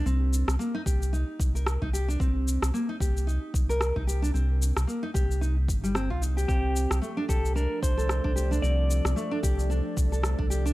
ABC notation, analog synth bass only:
X:1
M:4/4
L:1/16
Q:"Swing 16ths" 1/4=112
K:Cdor
V:1 name="Analog synth bass" clef=bass
C,,3 C,, z2 C,,3 z C,,3 C,,3 | C,,3 C,, z2 C,,3 z C,,3 C,,3 | C,,3 C,, z2 C,,4 G,,,3 C,,3 | C,,3 C,, z2 C,,3 z C,,3 C,,3 |
C,,3 C,, z2 C,,3 z C,,3 C,,3 |]